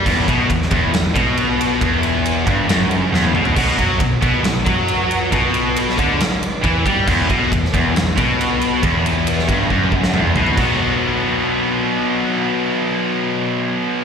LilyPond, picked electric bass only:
\new Staff \with { instrumentName = "Picked electric bass" } { \clef bass \time 4/4 \key b \minor \tempo 4 = 137 e,,8 b,,8 e,,8 e,,8 e,,8 b,,4. | e,,4. g,,8 fis,,4 e,,8 b,,8 | b,,8 fis,8 b,,8 b,,8 b,,8 fis,4. | b,,4. d,8 r4 e,8 g,8 |
e,,8 b,,8 e,,8 e,,8 e,,8 b,,4. | e,,4. g,,8 fis,,4 e,,8 b,,8 | b,,1~ | b,,1 | }